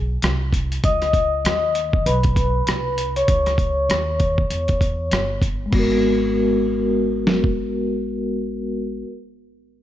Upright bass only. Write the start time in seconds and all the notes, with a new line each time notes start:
Already playing: B1
0.23 C2
0.84 C#2
1.45 D#2
2.06 B1
2.67 C2
3.28 C#2
3.89 D#2
4.50 E2
5.12 G1
5.73 G#1